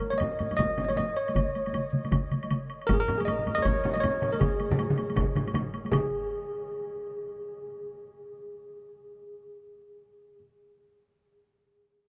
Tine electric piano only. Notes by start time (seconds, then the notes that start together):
Already playing: A#4
0.10 C#5
0.18 D#5
0.57 D#5
0.85 C#5 D#5
0.97 D#5
1.17 C#5
2.87 A#4
2.94 G#4
3.00 A#4
3.18 G#4
3.25 D#5
3.55 D#5
3.62 C#5
3.94 D#5
4.00 C#5
4.33 A#4
4.40 G#4
5.92 G#4